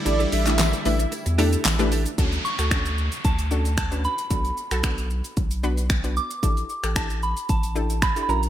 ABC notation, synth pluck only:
X:1
M:4/4
L:1/16
Q:1/4=113
K:D
V:1 name="Synth pluck"
[A,DEGA] z2 [A,DEGA] z2 [A,DEGB]2 z2 [A,DEGA] z2 [A,DEGB] z2 | [CDFA] z2 [FA] [CDFA]3 z3 [CDFA] z2 [CDFB] z2 | [B,DFA] z2 [FA] [B,DFA]3 z3 [B,DFB] z2 [B,DFB] z2 | [DEGA] z2 [GA] [DEGA]3 z3 [DEGA] z2 [DEGA] [CEF^A]2 |]